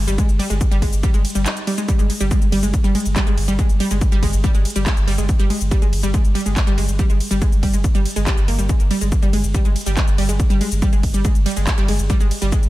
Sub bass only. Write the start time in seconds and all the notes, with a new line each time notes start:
0.08 G1
0.29 G1
0.50 G1
0.71 G1
0.82 G1
0.93 G1
1.14 G1
1.35 G1
1.99 G1
2.20 G1
2.42 G1
2.52 G1
2.63 G1
2.84 G1
3.06 G1
3.27 G1
3.38 G1
3.48 G1
3.70 G1
3.91 G1
4.12 G1
4.23 G1
4.33 G1
4.54 G1
4.76 G1
4.97 G1
5.08 G1
5.18 G1
5.40 G1
5.61 G1
5.82 G1
5.93 G1
6.03 G1
6.25 G1
6.46 G1
6.67 G1
6.78 G1
6.88 G1
7.10 G1
7.31 G1
7.52 G1
7.63 G1
7.74 G1
7.95 G1
8.16 G1
8.37 G1
8.48 G1
8.59 G1
8.80 G1
9.01 G1
9.22 G1
9.33 G1
9.44 G1
9.65 G1
9.86 G1
10.07 G1
10.18 G1
10.29 G1
10.50 G1
10.71 G1
10.93 G1
11.03 G1
11.14 G1
11.35 G1
11.57 G1
11.78 G1
11.89 G1
11.99 G1
12.21 G1
12.42 G1
12.63 G1